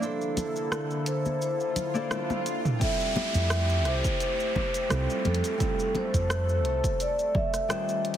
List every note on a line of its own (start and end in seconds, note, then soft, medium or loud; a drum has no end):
0.00 2.79 D3 medium
0.00 1.90 A#3 medium
0.00 2.79 A#3 medium
0.00 1.91 D4 medium
0.00 2.78 E4 medium
0.00 1.92 E4 medium
0.00 2.79 A4 medium
0.00 1.92 A4 medium
0.00 1.11 A4 medium
0.00 1.93 C5 medium
0.00 cabasa soft
0.21 cabasa soft
0.37 closed hi-hat medium
0.37 high conga medium
0.37 low conga medium
0.37 cabasa medium
0.56 cabasa soft
0.72 cross-stick loud
0.72 cabasa soft
0.91 cabasa soft
1.06 1.41 C5 loud
1.06 closed hi-hat medium
1.06 cabasa medium
1.25 high conga medium
1.25 cabasa soft
1.41 2.43 C5 medium
1.41 swell medium
1.41 cabasa soft
1.60 cabasa soft
1.76 closed hi-hat medium
1.76 low conga medium
1.76 cabasa medium
1.94 2.07 A#3 loud
1.94 2.07 D4 medium
1.94 2.08 E4 medium
1.94 2.08 A4 medium
1.94 2.08 D5 loud
1.94 cabasa soft
2.10 2.77 A#3 medium
2.10 2.77 D4 medium
2.10 2.77 E4 medium
2.10 2.78 A4 medium
2.10 2.78 C5 medium
2.10 cross-stick loud
2.10 high tom medium
2.10 cabasa soft
2.30 high tom medium
2.30 high conga medium
2.30 cabasa soft
2.46 closed hi-hat loud
2.46 cabasa medium
2.65 mid tom medium
2.65 cabasa soft
2.79 4.86 G3 medium
2.79 8.01 A3 medium
2.79 4.86 C4 medium
2.79 4.87 E4 medium
2.79 4.87 F4 medium
2.79 5.57 G4 medium
2.79 3.15 E5 loud
2.79 kick loud
2.79 closed hi-hat medium
2.79 downlifter medium
2.79 cabasa medium
2.83 4.88 A4 medium
3.00 cabasa soft
3.16 3.88 E5 loud
3.16 closed hi-hat soft
3.16 high conga loud
3.16 low conga medium
3.34 3.86 F2 loud
3.34 closed hi-hat soft
3.34 cabasa medium
3.50 cross-stick loud
3.50 closed hi-hat soft
3.50 cabasa medium
3.69 cabasa soft
3.85 4.01 C2 medium
3.85 4.19 C5 loud
3.85 cross-stick soft
3.85 closed hi-hat medium
4.04 kick loud
4.04 closed hi-hat soft
4.04 cabasa medium
4.20 5.29 C5 medium
4.20 closed hi-hat medium
4.20 cabasa medium
4.40 cabasa soft
4.56 kick medium
4.56 high conga medium
4.56 low conga medium
4.74 closed hi-hat soft
4.74 cabasa medium
4.89 5.06 C2 medium
4.89 5.56 G3 medium
4.89 5.56 C4 medium
4.89 5.56 E4 medium
4.89 5.57 F4 medium
4.89 5.57 A4 medium
4.89 cross-stick medium
4.89 closed hi-hat medium
4.89 cabasa medium
5.10 cabasa soft
5.25 5.40 F2 medium
5.25 5.98 A4 loud
5.25 closed hi-hat soft
5.25 high conga medium
5.34 closed hi-hat medium
5.44 closed hi-hat soft
5.44 cabasa medium
5.58 7.65 G3 medium
5.58 7.65 C4 medium
5.58 7.66 E4 medium
5.58 7.66 F4 medium
5.58 8.02 A4 medium
5.58 kick loud
5.58 closed hi-hat medium
5.58 cabasa medium
5.62 7.67 A4 medium
5.79 cabasa soft
5.95 6.97 C5 medium
5.95 closed hi-hat soft
5.95 high conga medium
5.95 low conga medium
6.14 6.65 F2 loud
6.14 kick medium
6.14 closed hi-hat soft
6.14 cabasa medium
6.30 cross-stick loud
6.30 closed hi-hat soft
6.30 cabasa medium
6.49 cabasa soft
6.65 6.80 C2 medium
6.65 closed hi-hat medium
6.84 kick loud
6.84 closed hi-hat soft
6.84 cabasa medium
7.00 7.37 D5 medium
7.00 closed hi-hat medium
7.00 cabasa medium
7.19 cabasa soft
7.35 8.01 E5 medium
7.35 kick loud
7.35 low conga medium
7.54 cross-stick soft
7.54 closed hi-hat soft
7.54 cabasa medium
7.68 8.17 D#3 medium
7.68 8.17 G3 medium
7.68 8.17 C#4 medium
7.68 8.17 F4 medium
7.68 8.17 C5 medium
7.68 cross-stick loud
7.68 closed hi-hat medium
7.68 cabasa medium
7.89 cabasa soft
8.04 8.17 D#3 medium
8.04 8.17 F4 medium
8.04 8.17 G4 medium
8.04 8.17 C5 medium
8.04 closed hi-hat soft
8.14 closed hi-hat medium